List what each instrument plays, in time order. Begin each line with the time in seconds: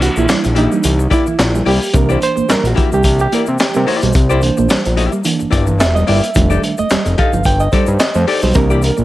Already playing: analog synth bass C2, reed electric piano E3 A#3 D4
0.00 reed electric piano F#4, muted hollow-body jazz guitar stroke, muted clean electric guitar stroke, closed hi-hat, shaker
0.16 analog synth bass A#1, clean electric guitar A#3, reed electric piano E4, muted hollow-body jazz guitar stroke, shaker
0.28 analog synth bass A#1, clean electric guitar G3, muted hollow-body jazz guitar stroke, snare, clap, closed hi-hat, shaker
0.44 analog synth bass A#1, muted hollow-body jazz guitar stroke, closed hi-hat, shaker
0.55 reed electric piano E3 A#3 D4 D#4, hollow-body jazz guitar A#3 E4 G4 E5, muted clean electric guitar stroke, closed hi-hat
0.71 clean electric guitar G3, muted hollow-body jazz guitar stroke, shaker
0.83 analog synth bass C2, clean electric guitar E3, closed hi-hat, shaker
0.99 muted hollow-body jazz guitar stroke, shaker
1.10 hollow-body jazz guitar A#3 E4 G4 D5, reed electric piano E4, muted clean electric guitar stroke, kick, closed hi-hat, shaker
1.26 clean electric guitar E3, muted hollow-body jazz guitar stroke, shaker
1.39 analog synth bass A#1, muted hollow-body jazz guitar stroke, snare, clap, closed hi-hat, shaker
1.54 clean electric guitar G3, muted hollow-body jazz guitar stroke, shaker
1.65 analog synth bass C2, clean electric guitar G3, hollow-body jazz guitar A#3 E4 G4 D5, reed electric piano G4, open hi-hat
1.82 muted hollow-body jazz guitar stroke, shaker
1.93 analog synth bass C2, reed electric piano E3 A#3 D4 A#4, clean electric guitar C4, muted hollow-body jazz guitar stroke, kick, closed hi-hat, shaker
2.09 hollow-body jazz guitar A#3 E4 G4 D5, reed electric piano C5, shaker
2.20 reed electric piano C5, muted hollow-body jazz guitar stroke, muted clean electric guitar stroke, closed hi-hat, shaker
2.35 analog synth bass A#1, clean electric guitar A#3, muted hollow-body jazz guitar stroke, shaker
2.49 analog synth bass A#1, clean electric guitar G3, reed electric piano A#4, muted hollow-body jazz guitar stroke, snare, clap, closed hi-hat, shaker
2.64 analog synth bass A#1, reed electric piano F#4, muted hollow-body jazz guitar stroke, closed hi-hat, shaker
2.75 hollow-body jazz guitar A#3 E4 G4 E5, muted clean electric guitar stroke, kick, closed hi-hat
2.92 analog synth bass C2, clean electric guitar G3, reed electric piano G4, muted hollow-body jazz guitar stroke, shaker
3.03 analog synth bass C2, kick, closed hi-hat, shaker
3.19 reed electric piano G4, muted hollow-body jazz guitar stroke, shaker
3.32 clean electric guitar A#3, hollow-body jazz guitar A#3 E4 G4 D5, reed electric piano A#4, closed hi-hat, shaker
3.46 analog synth bass C3, muted hollow-body jazz guitar stroke, shaker
3.58 reed electric piano G4, muted hollow-body jazz guitar stroke, snare, clap, closed hi-hat, shaker
3.74 analog synth bass C3, clean electric guitar G3, reed electric piano A#4, muted hollow-body jazz guitar stroke, shaker
3.87 hollow-body jazz guitar A#3 E4 G4 D5, reed electric piano C5, muted clean electric guitar stroke, open hi-hat
4.02 analog synth bass B1, clean electric guitar G3, muted hollow-body jazz guitar stroke, closed hi-hat, shaker
4.13 analog synth bass C2, clean electric guitar C4, muted hollow-body jazz guitar stroke, kick, closed hi-hat, shaker
4.29 hollow-body jazz guitar A#3 E4 G4 D5, reed electric piano C5, shaker
4.41 reed electric piano E3 A#3 D4, muted clean electric guitar stroke, closed hi-hat, shaker
4.57 analog synth bass A#1, clean electric guitar A#3, muted hollow-body jazz guitar stroke, shaker
4.69 analog synth bass A#1, clean electric guitar G3, muted hollow-body jazz guitar stroke, snare, clap, closed hi-hat, shaker
4.84 analog synth bass A#1, muted hollow-body jazz guitar stroke, closed hi-hat, shaker
4.97 hollow-body jazz guitar A#3 E4 G4 E5, muted clean electric guitar stroke, closed hi-hat
5.12 clean electric guitar G3, muted hollow-body jazz guitar stroke, shaker
5.24 clean electric guitar E3, reed electric piano E3 A#3 D4, closed hi-hat, shaker
5.39 analog synth bass G1, muted hollow-body jazz guitar stroke, shaker
5.50 analog synth bass G1, hollow-body jazz guitar A#3 E4 G4 D5, kick, closed hi-hat, shaker
5.67 clean electric guitar E3, muted hollow-body jazz guitar stroke, shaker
5.78 analog synth bass E1, reed electric piano E5, muted hollow-body jazz guitar stroke, snare, clap, closed hi-hat, shaker
5.94 clean electric guitar G3, reed electric piano D#5, muted hollow-body jazz guitar stroke, shaker
6.07 analog synth bass G1, clean electric guitar G3, hollow-body jazz guitar A#3 E4 G4 D5, reed electric piano E5, open hi-hat
6.23 muted hollow-body jazz guitar stroke, closed hi-hat, shaker
6.34 analog synth bass F1, reed electric piano D#3 G3 A3 D4, clean electric guitar F3, muted hollow-body jazz guitar stroke, kick, closed hi-hat, shaker
6.50 hollow-body jazz guitar D#4 G4 A4 D5, shaker
6.63 muted hollow-body jazz guitar stroke, muted clean electric guitar stroke, closed hi-hat, shaker
6.78 analog synth bass F1, clean electric guitar A3, reed electric piano D#5, muted hollow-body jazz guitar stroke, shaker
6.90 analog synth bass F1, clean electric guitar G3, muted hollow-body jazz guitar stroke, snare, clap, closed hi-hat, shaker
7.05 analog synth bass F1, muted hollow-body jazz guitar stroke, closed hi-hat, shaker
7.18 hollow-body jazz guitar D#4 G4 A4 D#5, reed electric piano F5, muted clean electric guitar stroke, kick, closed hi-hat
7.33 analog synth bass G1, clean electric guitar F3, muted hollow-body jazz guitar stroke, shaker
7.44 analog synth bass G1, reed electric piano G5, kick, closed hi-hat, shaker
7.60 reed electric piano D#5, muted hollow-body jazz guitar stroke, shaker
7.72 clean electric guitar G3, hollow-body jazz guitar D#4 G4 A4 D5, reed electric piano C5, kick, closed hi-hat, shaker
7.86 analog synth bass G2, muted hollow-body jazz guitar stroke, shaker
7.99 reed electric piano D#5, muted hollow-body jazz guitar stroke, snare, clap, closed hi-hat, shaker
8.14 analog synth bass F2, clean electric guitar A3, reed electric piano C5, muted hollow-body jazz guitar stroke, shaker
8.27 hollow-body jazz guitar D#4 G4 A4 D5, muted clean electric guitar stroke, open hi-hat
8.42 analog synth bass B1, clean electric guitar G3, reed electric piano C5, muted hollow-body jazz guitar stroke, shaker
8.54 analog synth bass C2, reed electric piano E3 A#3 D4 A#4, clean electric guitar C4, muted hollow-body jazz guitar stroke, kick, closed hi-hat, shaker
8.70 hollow-body jazz guitar A#3 E4 G4 D5, reed electric piano G4, shaker
8.82 reed electric piano A#4, muted clean electric guitar stroke, closed hi-hat, shaker
8.97 analog synth bass A#1, clean electric guitar A#3, muted hollow-body jazz guitar stroke, shaker